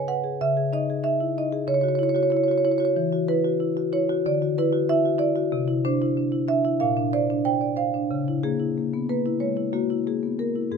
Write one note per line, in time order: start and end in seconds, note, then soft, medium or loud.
0.00 0.35 C#3 medium
0.08 0.34 B4 soft
0.08 0.39 F#5 medium
0.24 0.40 G#4 soft
0.41 1.65 C#3 medium
0.41 0.72 E5 medium
0.57 0.82 G#4 soft
0.73 0.98 D#4 soft
0.73 1.04 D#5 medium
0.90 1.15 G#4 soft
1.04 1.30 D#4 soft
1.04 1.35 E5 medium
1.20 1.37 E4 soft
1.38 1.63 D#4 soft
1.38 1.68 D#5 medium
1.53 1.68 G#4 soft
1.68 2.91 C#3 medium
1.68 1.74 C#5 medium
1.74 1.81 C#5 medium
1.81 2.09 F#4 soft
1.81 1.89 C#5 medium
1.89 1.95 C#5 medium
1.95 2.25 E4 medium
1.95 2.03 C#5 medium
2.03 2.09 C#5 medium
2.09 2.16 C#5 medium
2.15 2.41 F#4 soft
2.15 2.23 C#5 medium
2.23 2.30 C#5 medium
2.30 2.57 E4 soft
2.30 2.37 C#5 medium
2.37 2.43 C#5 medium
2.43 2.51 C#5 medium
2.48 2.64 F#4 soft
2.48 2.58 C#5 medium
2.58 2.65 C#5 medium
2.65 2.90 E4 soft
2.65 2.71 C#5 medium
2.71 2.78 C#5 medium
2.78 2.96 F#4 soft
2.78 2.85 C#5 medium
2.85 2.91 C#5 medium
2.96 4.21 E3 medium
3.13 3.38 F#4 soft
3.28 3.54 E4 soft
3.28 3.90 B4 medium
3.44 3.70 F#4 soft
3.60 3.86 E4 soft
3.77 3.93 F#4 soft
3.93 4.18 E4 soft
3.93 4.23 C#5 medium
4.09 4.25 F#4 medium
4.26 5.49 D3 medium
4.26 4.56 D5 medium
4.42 4.67 F#4 soft
4.58 4.83 E4 medium
4.58 4.88 B4 medium
4.73 4.98 F#4 soft
4.89 5.15 E4 medium
4.89 5.20 E5 medium
5.05 5.21 F#4 soft
5.18 5.45 E4 soft
5.18 5.51 D5 medium
5.36 5.52 F#4 soft
5.52 6.77 C3 medium
5.68 5.94 E4 soft
5.85 6.11 D4 medium
5.85 6.47 C5 medium
6.02 6.27 E4 soft
6.17 6.43 D4 soft
6.32 6.49 E4 soft
6.48 6.74 D4 soft
6.48 6.80 E5 medium
6.65 6.81 E4 soft
6.80 8.07 A#2 medium
6.80 7.12 F5 medium
6.97 7.23 D4 soft
7.13 7.39 C5 soft
7.13 7.45 D5 medium
7.30 7.56 D4 soft
7.45 7.72 C5 soft
7.45 7.77 G5 medium
7.61 7.78 D5 soft
7.76 8.03 C5 soft
7.76 8.09 F5 medium
7.94 8.11 D4 soft
8.11 9.37 C#3 medium
8.28 8.53 E4 soft
8.43 8.70 A#3 soft
8.43 9.05 G#4 medium
8.60 8.85 E4 soft
8.78 9.03 A#3 soft
8.94 9.09 B3 soft
9.09 9.35 A#3 soft
9.09 9.40 B4 medium
9.26 9.51 E4 soft
9.40 9.67 G#3 soft
9.40 9.72 C#5 medium
9.57 9.83 E4 soft
9.73 9.99 A#3 soft
9.73 10.05 F#4 medium
9.90 10.16 E4 soft
10.07 10.33 A#3 soft
10.07 10.38 G#4 soft
10.23 10.39 B3 soft
10.39 10.66 A#3 soft
10.39 10.71 A#4 soft
10.56 10.73 E4 soft
10.71 10.77 G#2 soft
10.71 10.77 G#4 medium